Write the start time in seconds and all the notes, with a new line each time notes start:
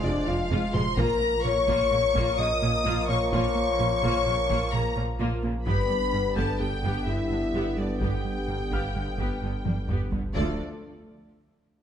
Already playing: F1 F3 G#3 F4 C5 G#5 G#6
0.03 F1 F2 C3 G#3 D4 D5
0.27 F1 F2 F3 C4 F4 F5
0.50 F1 F2 G#3 F4
0.74 F1 F2 C3 F3 G#3 C5 C6, taiko mid
0.97 A#1 A#2 F3 A#3 F4 A#4 A#5, taiko
1.22 A#3
1.44 A#1 A#2 F3 C#4 C#5 C#6
1.68 A#1 A#2 A#3 F4, taiko
1.91 A#1 A#2 C#3 A#3
2.15 A#1 A#2 A#3 F4, taiko
2.38 A#1 A#2 C#3 A#3 D#5 D#6
2.62 A#1 A#2 F3 C#4
2.85 A#1 A#2 A#3 F4
3.08 A#1 A#2 C#3 A#3 C#5 C#6
3.32 A#1 A#2 A#3 F4 C#5 C#6, taiko
3.55 A#3
3.79 A#1 A#2 F3 C#4
4.02 A#1 A#2 A#3 F4, taiko
4.26 A#1 A#2 C#3 A#3
4.49 A#1 A#2 A#3 F4, taiko
4.73 A#1 A#2 C#3 A#3 A#4 A#5
4.96 A#1 A#2 F3 C#4
5.19 A#1 A#2 A#3 F4
5.43 A#1 A#2 C#3 A#3
5.65 G1 G2 D3 G3 B3 D4 G4 B4 B5, taiko
5.90 G3
6.13 G1 G2 G3 D4
6.36 G1 G2 B3 G4 A4 A5 G6, taiko
6.60 G1 G2 D3 B3 G4 G5
6.83 G1 G2 B3 G4, taiko
7.06 G1 G2 D3 B3 E4 E5
7.30 G1 G2 G3 D4
7.53 G1 G2 B3 G4
7.77 G1 G2 D3 G3 B3 D4 D5
8.00 G1 G2 B3 G4 G5, taiko
8.25 G3
8.48 G1 G2 G3 D4
8.71 G1 G2 B3 G4 F5 F6, taiko
8.95 G1 G2 D3 B3
9.18 G1 G2 B3 G4, taiko
9.42 G1 G2 D3 B3
9.65 G1 G2 G3 D4, taiko high
9.88 G1 G2 B3 G4, taiko low-mid
10.11 G1 G2 D3 G3 B3, taiko low
10.35 D1 D2 F3 A3 D4 F4 A4 D5, taiko